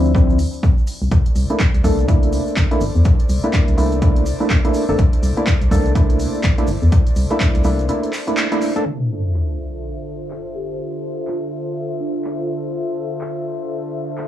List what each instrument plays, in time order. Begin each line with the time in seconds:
Already playing: fm bass D2, synth stab F3 C4 D4 E4
0.05 shaker
0.14 synth stab F3 C4 D4 E4, kick, shaker
0.30 shaker
0.39 open hi-hat, shaker
0.53 shaker
0.63 kick, shaker
0.78 shaker
0.87 open hi-hat, shaker
1.02 fm bass C2, shaker
1.11 fm bass C2, analog synth pad E4 A4 C5 D5, kick, closed hi-hat, shaker
1.26 closed hi-hat, shaker
1.36 fm bass C2, open hi-hat, shaker
1.50 synth stab A3 A#3 D4 E4, closed hi-hat, shaker
1.60 kick, clap, closed hi-hat, shaker
1.74 fm bass C2, closed hi-hat, shaker
1.84 fm bass C2, synth stab A3 A#3 D4 A4, kick, open hi-hat, shaker
1.99 closed hi-hat, shaker
2.08 synth stab A3 A#3 D4 E4, kick, closed hi-hat, shaker
2.23 closed hi-hat, shaker
2.32 open hi-hat, shaker
2.47 shaker
2.57 fm bass G1, kick, clap, closed hi-hat, shaker
2.71 synth stab A3 A#3 D4 E4, closed hi-hat, shaker
2.81 fm bass G1, open hi-hat, shaker
2.95 fm bass E2, shaker
3.04 kick, closed hi-hat, shaker
3.19 closed hi-hat, shaker
3.29 fm bass C2, open hi-hat, shaker
3.43 synth stab A3 A#3 D4 E4, closed hi-hat, shaker
3.53 kick, clap, closed hi-hat, shaker
3.68 fm bass C2, closed hi-hat, shaker
3.77 fm bass C2, synth stab A3 A#3 D4 E4, open hi-hat, shaker
3.92 closed hi-hat, shaker
4.02 synth stab A3 A#3 D4 E4, kick, closed hi-hat, shaker
4.16 closed hi-hat, shaker
4.26 open hi-hat, shaker
4.40 synth stab A3 A#3 D4 E4, shaker
4.50 kick, clap, closed hi-hat, shaker
4.64 synth stab A3 A#3 D4 E4, closed hi-hat, shaker
4.74 open hi-hat, shaker
4.89 fm bass G1, synth stab A3 A#3 D4 A4, shaker
4.98 fm bass C2, kick, closed hi-hat, shaker
5.13 closed hi-hat, shaker
5.23 fm bass C2, open hi-hat, shaker
5.37 synth stab A3 A#3 D4 E4, closed hi-hat, shaker
5.46 kick, clap, closed hi-hat, shaker
5.61 fm bass C2, closed hi-hat, shaker
5.71 fm bass C2, synth stab A3 A#3 D4 A4, kick, open hi-hat, shaker
5.86 closed hi-hat, shaker
5.95 synth stab A3 A#3 D4 E4, kick, closed hi-hat, shaker
6.10 closed hi-hat, shaker
6.19 open hi-hat, shaker
6.34 shaker
6.43 fm bass G1, kick, clap, closed hi-hat, shaker
6.58 synth stab A3 A#3 D4 E4, closed hi-hat, shaker
6.67 fm bass G1, open hi-hat, shaker
6.82 fm bass E2, shaker
6.92 kick, closed hi-hat, shaker
7.07 closed hi-hat, shaker
7.16 fm bass C2, open hi-hat, shaker
7.31 synth stab A3 A#3 D4 E4, closed hi-hat, shaker
7.40 kick, clap, closed hi-hat, shaker
7.55 fm bass C2, closed hi-hat, shaker
7.64 fm bass C2, synth stab A3 A#3 D4 E4, open hi-hat, shaker
7.79 closed hi-hat, shaker
7.89 synth stab A3 A#3 D4 E4, closed hi-hat, shaker
8.03 closed hi-hat, shaker
8.13 clap, open hi-hat, shaker
8.27 synth stab A3 A#3 D4 E4, closed hi-hat, shaker
8.37 clap, closed hi-hat, shaker
8.52 synth stab A3 A#3 D4 E4, closed hi-hat, shaker
8.61 open hi-hat, shaker
8.76 synth stab A3 A#3 D4 A4, closed hi-hat, shaker
8.85 analog synth pad D3 F4 A4 C5 E5, ambient pad D4, closed hi-hat, sub drop, shaker
9.00 closed hi-hat, shaker
9.10 ambient pad F4, shaker
9.15 ambient pad C5
9.25 shaker
9.34 clap, closed hi-hat
9.43 ambient pad E5
9.48 closed hi-hat, shaker
9.58 shaker
9.73 shaker
9.82 closed hi-hat, shaker
9.97 closed hi-hat, shaker
10.06 shaker
10.21 shaker
10.31 clap, closed hi-hat
10.45 closed hi-hat, shaker
10.55 marimba G4, shaker
10.69 shaker
10.79 closed hi-hat, shaker
10.94 closed hi-hat, shaker
11.04 shaker
11.18 shaker
11.27 marimba F4, clap, closed hi-hat, shaker
11.42 closed hi-hat, shaker
11.51 shaker
11.66 shaker
11.76 closed hi-hat, shaker
11.90 closed hi-hat, shaker
12.00 marimba D4, shaker
12.14 shaker
12.24 clap, closed hi-hat, shaker
12.38 marimba F4, closed hi-hat, shaker
12.49 shaker
12.63 shaker
12.73 closed hi-hat, shaker
12.87 closed hi-hat, shaker
12.98 shaker
13.12 shaker
13.21 clap, closed hi-hat, shaker
13.36 closed hi-hat, shaker
13.45 shaker
13.61 ambient pad D5, shaker
13.70 closed hi-hat, shaker
13.84 closed hi-hat, shaker
13.94 shaker
14.09 shaker
14.18 clap, closed hi-hat, shaker